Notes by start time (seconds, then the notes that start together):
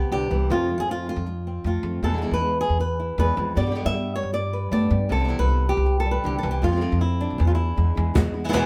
Already playing: C3 B3 G4
0.12 C2 D3 G4
0.30 C2 E3 G3 B3 E4
0.50 F2 C3 F3 A3 C4 F4
0.68 A3 C4 F4
0.78 F2 G#4
0.88 F3 A3 C4 F4
1.06 A3 C4 F4
1.16 F2
1.26 muted nylon-string guitar stroke
1.47 C4
1.64 F2 A3 C4 F4
1.83 F2 A3 C4 F4
2.03 E2 B2 E3 G#3 B3 E4 A4
2.08 E3 G#3 B3 E4
2.12 E3 G#3 B3 E4
2.17 E3 G#3 B3 E4
2.22 B2 E3 G#3 B3 E4
2.31 E2 B4
2.41 G#3 B3 E4
2.61 G#4
2.69 E2
2.79 B4, muted nylon-string guitar stroke
3.00 E4
3.18 E2 E3 G#3 B3 E4 B4
3.37 E2 F2 G#3 B3 E4
3.55 G2 B2 D3 G3 B3 G4 D5
3.62 D3 G3 B3 G4
3.66 D3 G3 B3 G4
3.71 D3 G3 B3 G4
3.75 B2 D3 G3 B3 G4
3.85 G2 E5
3.94 G3 B3 G4
4.15 C#5
4.23 G2
4.32 D5, muted nylon-string guitar stroke
4.53 B4
4.71 G2 D3 G3 A3 B3 G4 D5
4.90 G2 G3 B3 G4
5.09 C2 C3 E3 G3 B3 E4 A4
5.15 E3 G3 B3 E4
5.19 E3 G3 B3 E4
5.24 E3 G3 B3 E4
5.28 C3 E3 G3 B3 E4
5.39 C2 B4
5.47 G3 B3 E4
5.69 G4
5.77 C2
5.86 muted nylon-string guitar stroke
6.00 A4
6.06 G3
6.11 B4
6.24 C2 D3 E3 G3 B3 E4 G4
6.38 A4
6.43 C2 E3 G3 B3 E4
6.51 G4
6.62 F2 C3 F3 A3 C4 F4
6.67 F3 A3 C4 F4
6.72 F3 A3 C4 F4
6.76 F3 A3 C4 F4
6.81 C3 F3 A3 C4 F4
6.92 F2
7.00 A3 C4 E4
7.21 D4
7.30 B1
7.38 E2 E4, muted nylon-string guitar stroke
7.47 F4
7.55 E4
7.76 E2 E3 G#3 B3 E4
7.95 E2 G#3 B3 E4
8.14 E2 B2 E3 G#3 B3 E4, muted nylon-string guitar stroke, cajon bass
8.34 G#3 B3 E4
8.44 E3 G#3 B3 E4
8.49 E3 G#3 B3 E4
8.53 B2 E3 G#3 B3 E4, muted nylon-string guitar stroke, cajon slap